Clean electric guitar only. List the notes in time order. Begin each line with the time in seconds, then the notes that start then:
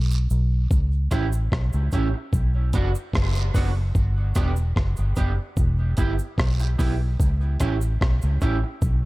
1.11 C#4 E4 G4
1.93 C#4 E4 G4
2.14 muted clean electric guitar stroke
2.74 B3 D4 F#4
3.55 B3 D4 F#4
4.36 B3 D4 G4
5.17 B3 D4 G4
5.97 B3 E4 G4
6.60 muted clean electric guitar stroke
6.79 B3 E4 G4
7.60 C#4 E4 G4
8.42 C#4 E4 G4
8.64 muted clean electric guitar stroke